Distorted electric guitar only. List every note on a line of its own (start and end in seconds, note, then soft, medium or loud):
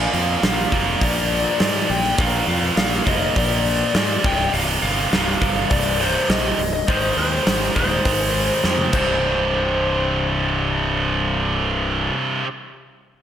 0.00 0.74 A#2 medium
0.00 0.73 F3 loud
0.00 0.72 A#3 loud
0.72 1.59 A#2 medium
0.72 1.59 F3 loud
0.72 1.59 A#3 loud
1.61 2.17 A#2 medium
1.61 2.18 F3 medium
1.61 2.18 A#3 medium
2.19 3.05 A#2 loud
2.19 3.06 F3 loud
2.19 3.05 A#3 loud
3.07 3.94 A#2 medium
3.07 3.94 F3 medium
3.07 3.93 A#3 medium
3.95 4.22 A#2 medium
3.95 4.23 F3 medium
3.95 4.24 A#3 loud
4.24 5.10 C2 medium
4.24 5.11 G2 loud
4.24 5.11 C3 loud
5.11 5.98 C2 medium
5.11 5.99 G2 medium
5.11 5.98 C3 loud
5.99 6.58 C2 medium
5.99 6.57 G2 medium
5.99 6.57 C3 loud
6.87 7.74 G#2 loud
6.87 7.75 D#3 loud
6.87 7.74 G#3 loud
7.75 8.63 G#2 medium
7.75 8.63 D#3 medium
7.75 8.62 G#3 medium
8.64 8.92 G#2 medium
8.64 8.94 D#3 medium
8.64 8.94 G#3 medium
8.92 12.42 C2 loud
8.92 12.45 G2 loud
8.96 12.46 C3 loud